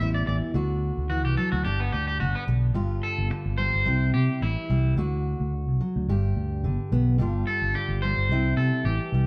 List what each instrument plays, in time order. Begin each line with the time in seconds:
Already playing: steel-string acoustic guitar E2 G3
0.00 fingered electric bass A1, steel-string acoustic guitar E4
0.14 clean electric guitar D5
0.27 fingered electric bass A1, steel-string acoustic guitar E3, clean electric guitar D5
0.54 fingered electric bass D2, steel-string acoustic guitar D3 F#4
0.97 fingered electric bass D2
1.10 steel-string acoustic guitar E3, clean electric guitar F#4
1.25 fingered electric bass C2, clean electric guitar G4
1.37 steel-string acoustic guitar F#3, clean electric guitar A4
1.52 fingered electric bass D2, clean electric guitar F#4
1.65 fingered electric bass G1, steel-string acoustic guitar G2 D4, clean electric guitar G4
1.80 clean electric guitar B3
1.92 fingered electric bass D2, clean electric guitar G4
2.07 clean electric guitar G4
2.20 fingered electric bass G1, steel-string acoustic guitar D3, clean electric guitar F#4
2.35 clean electric guitar B3
2.47 fingered electric bass B1, muted steel-string acoustic guitar stroke
2.74 fingered electric bass G1, steel-string acoustic guitar G2 F4
3.03 clean electric guitar A4
3.18 fingered electric bass G1
3.30 steel-string acoustic guitar D3, muted clean electric guitar stroke
3.46 fingered electric bass G1
3.58 steel-string acoustic guitar G3, clean electric guitar C5
3.74 fingered electric bass G1
3.86 fingered electric bass C2, steel-string acoustic guitar C3 E4
4.14 fingered electric bass C3, clean electric guitar G4
4.42 fingered electric bass A1, steel-string acoustic guitar E3, clean electric guitar E4
4.70 fingered electric bass C2, steel-string acoustic guitar G3
4.97 fingered electric bass D2, steel-string acoustic guitar D3 F#4
5.40 fingered electric bass D2
5.68 fingered electric bass C2
5.81 steel-string acoustic guitar F#3
5.96 fingered electric bass D2
6.08 fingered electric bass G1, steel-string acoustic guitar G2 G4
6.36 fingered electric bass D2
6.63 fingered electric bass G1, steel-string acoustic guitar D3
6.92 fingered electric bass B1, steel-string acoustic guitar B3
7.18 fingered electric bass G1, steel-string acoustic guitar G2 G3 D4 F4, muted steel-string acoustic guitar stroke
7.47 clean electric guitar A4
7.62 fingered electric bass G1
7.74 steel-string acoustic guitar D3, clean electric guitar G4
7.89 fingered electric bass G1
8.02 steel-string acoustic guitar G3, clean electric guitar C5
8.17 fingered electric bass G1
8.29 fingered electric bass C2, steel-string acoustic guitar C3 E4
8.56 fingered electric bass C3, clean electric guitar A4
8.84 fingered electric bass A1, steel-string acoustic guitar E3, clean electric guitar G4
9.12 fingered electric bass C2, steel-string acoustic guitar G3